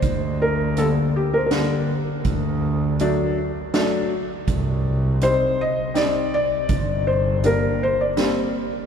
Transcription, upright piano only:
X:1
M:3/4
L:1/8
Q:1/4=81
K:Gm
V:1 name="Upright piano"
z2 [D,G,B,] z [D,G,B,] z | z2 [^F,A,D] z [F,A,D] z | z2 [G,CE] z [G,CE] z | z2 [G,B,D] z [G,B,C] z |]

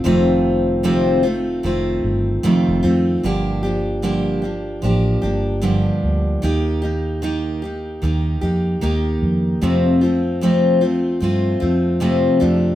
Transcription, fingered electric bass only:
X:1
M:4/4
L:1/16
Q:"Swing 16ths" 1/4=75
K:Fmix
V:1 name="Fingered electric bass" clef=bass
F,,,8 F,,,2 G,,,2 z F,,, F,,2 | G,,,8 A,,,2 G,,,4 D,,2 | E,,8 E,,2 F,,2 E,,2 F,,2 | F,,8 G,,2 F,,4 F,,2 |]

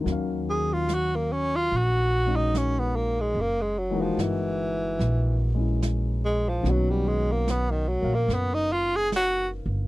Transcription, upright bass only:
X:1
M:4/4
L:1/8
Q:"Swing" 1/4=73
K:F#
V:1 name="Upright bass" clef=bass
D,,4 A,,,4 | F,,,2 =G,,,2 A,,,4 | B,,,3 A,,, F,,,3 =G,,, |]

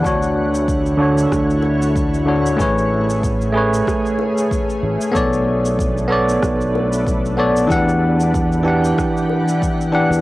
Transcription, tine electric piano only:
X:1
M:4/4
L:1/8
Q:"Swing 16ths" 1/4=94
K:A
V:1 name="Tine electric piano"
[D,DFc]3 [D,DFc]4 [D,DFc] | [A,GBc]3 [A,GBc]4 z | [B,Acd]3 [B,Acd]4 [B,Acd] | [E,D=Gf]3 [E,DGf]4 [E,DGf] |]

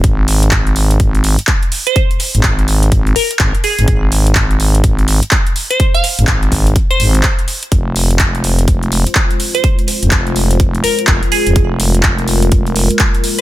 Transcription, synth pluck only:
X:1
M:4/4
L:1/16
Q:"Swing 16ths" 1/4=125
K:Fm
V:1 name="Synth pluck"
z12 z3 c- | c3 z6 z B z3 A2- | A z12 z2 c- | c f z6 z c3 z4 |
z12 z3 c- | c3 z6 z B z3 A2- | A z12 z3 |]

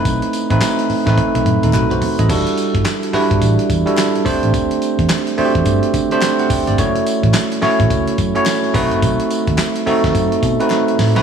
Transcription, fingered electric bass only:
X:1
M:4/4
L:1/16
Q:"Swing 16ths" 1/4=107
K:Em
V:1 name="Fingered electric bass" clef=bass
B,,, z2 A,,, z3 A,,, z B,,, F,, ^D,, B,,, B,,, z A,,, | z3 G,,, z3 G,,, A,,, z E,, z3 D,, A,,, | D,, z2 E,, z3 E,, G,, z D, z3 D,, G,,, | F,,, z2 A,,, z3 A,,, ^C,, z F,, z3 B,,, F,,, |
B,,, z2 ^D,, z3 D,, F,, z B,, z3 A,, B,,, |]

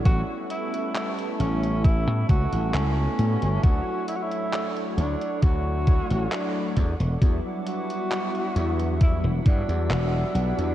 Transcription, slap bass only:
X:1
M:4/4
L:1/16
Q:1/4=67
K:D
V:1 name="Slap bass" clef=bass
A,,, z4 z A,,,3 A,, C,, A,,, C,, z A,, G,,, | D,, z4 z D,, z D,,3 A,,, z2 E,, E,,, | E,, z4 z E,,3 E,,, G,, E,, E,,, z B,,, E,, |]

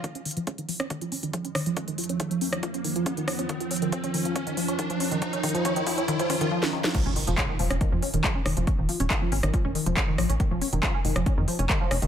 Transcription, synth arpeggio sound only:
X:1
M:4/4
L:1/16
Q:1/4=139
K:Ebdor
V:1 name="Synth arpeggio sound" clef=bass
F, D E, F, D E, F, D E, F, D E, F, D E, F, | D E, F, D E, F, D E, F, D E, F, D E, F, D | E, F, D E, F, D E, F, D E, F, D E, F, D E, | F, D E, F, D E, F, D E, F, D E, F, D E, F, |
F, D E, F, D E, F, D E, F, D E, F, D E, F, | D E, F, D E, F, D E, F, D E, F, D E, F, D | E, F, D E, F, D E, F, D E, F, D E, F, D E, |]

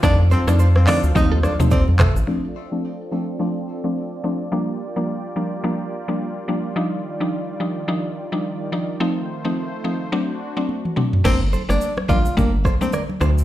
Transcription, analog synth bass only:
X:1
M:4/4
L:1/16
Q:"Swing 16ths" 1/4=107
K:Dphr
V:1 name="Analog synth bass" clef=bass
F,,3 F,,4 D,, E,,3 E,,2 F,,2 A,,, | z16 | z16 | z16 |
z16 | [K:Gm] G,,,3 G,,, z2 B,,,2 G,,,3 z3 D,,2 |]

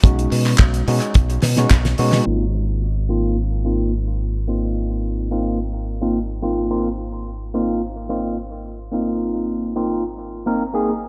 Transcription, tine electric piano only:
X:1
M:4/4
L:1/16
Q:1/4=108
K:Ab
V:1 name="Tine electric piano"
[^G,D^D^F]6 [G,_D^DF]2 z3 [G,_D^DF] z2 [G,_D^DF]2 | [B,CEF] z4 z [B,CEF]2 z2 [B,CEF]2 z4 | [B,CEF]6 [B,CEF]2 z3 [B,CEF] z2 [B,CEF]2 | [B,CEF] z4 z [B,CEF]2 z2 [B,CEF]2 z4 |
[B,CEF]6 [B,CEF]2 z3 [B,CEB] z [B,CEA] z2 |]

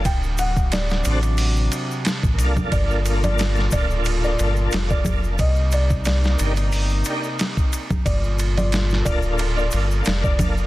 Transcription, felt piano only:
X:1
M:4/4
L:1/16
Q:"Swing 16ths" 1/4=90
K:Gm
V:1 name="Felt piano"
g2 ^f2 d3 z8 z | d3 d3 d3 d4 d3 | e2 d2 d3 z8 z | d3 d3 d3 d4 d3 |]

